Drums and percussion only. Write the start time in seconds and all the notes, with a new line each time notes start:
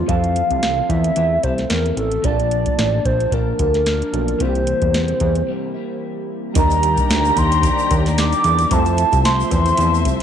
0.09 kick, closed hi-hat
0.24 closed hi-hat
0.36 closed hi-hat
0.51 kick, closed hi-hat
0.63 snare, closed hi-hat
0.89 kick, closed hi-hat
1.04 closed hi-hat
1.16 closed hi-hat
1.43 kick, closed hi-hat
1.58 snare, closed hi-hat
1.70 snare, closed hi-hat
1.86 closed hi-hat
1.97 closed hi-hat
2.12 closed hi-hat
2.24 kick, closed hi-hat
2.40 closed hi-hat
2.51 closed hi-hat
2.66 kick, closed hi-hat
2.79 snare, closed hi-hat
3.05 kick, closed hi-hat
3.20 closed hi-hat
3.32 kick, closed hi-hat
3.59 kick, closed hi-hat
3.74 snare, closed hi-hat
3.86 snare, closed hi-hat
4.02 closed hi-hat
4.14 closed hi-hat
4.28 closed hi-hat
4.40 kick, closed hi-hat
4.55 closed hi-hat
4.67 closed hi-hat
4.82 kick, closed hi-hat
4.94 snare, closed hi-hat
5.08 closed hi-hat
5.20 kick, closed hi-hat
5.35 closed hi-hat
6.55 kick, closed hi-hat, shaker
6.70 closed hi-hat, shaker
6.83 closed hi-hat, shaker
6.97 kick, closed hi-hat, shaker
7.10 snare, closed hi-hat, shaker
7.25 shaker
7.36 kick, closed hi-hat, shaker
7.52 closed hi-hat, shaker
7.63 kick, closed hi-hat, shaker
7.79 shaker
7.91 kick, closed hi-hat, shaker
8.06 snare, closed hi-hat, shaker
8.18 snare, closed hi-hat, shaker
8.33 closed hi-hat, shaker
8.44 closed hi-hat, shaker
8.59 closed hi-hat, shaker
8.71 kick, closed hi-hat, shaker
8.86 closed hi-hat, shaker
8.98 closed hi-hat, shaker
9.12 kick, closed hi-hat, shaker
9.25 snare, closed hi-hat, shaker
9.40 shaker
9.51 kick, closed hi-hat, shaker
9.66 closed hi-hat, shaker
9.77 closed hi-hat, shaker
9.94 shaker
10.05 kick, closed hi-hat, shaker